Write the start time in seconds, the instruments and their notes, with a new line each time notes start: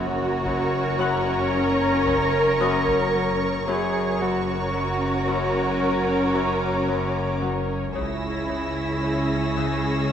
Already playing: double bass section F#1, synth drone F#1, harp F#2 A#3, viola section C#4, cello section F#4, violin section A#4 C#5 A#5
0.45 harp F#2, violin section C#6, taiko
0.99 harp F#2 F#5 F#6
1.53 harp F#3, cello section A#4
2.07 harp F#2, taiko
2.60 harp F#2 D#6
2.87 taiko
3.14 harp F#3
3.67 synth drone F#1, double bass section F#1, harp F#2, viola section C#4, cello section G#4, violin section A#4 C#5
4.21 harp F#2, cello section F#4
4.74 harp F#2
5.28 harp F#2
5.65 violin section D6
5.82 harp F#3
6.34 harp F#2 C#5
6.88 harp F#2
7.42 harp F#3
7.95 double bass section C#2, synth drone C#2, harp C#3, viola section C#4, cello section E4, violin section G#4 C#5 E6 A#6, taiko
8.49 harp C#3
9.03 harp C#3
9.57 harp C#3 E5 E6, taiko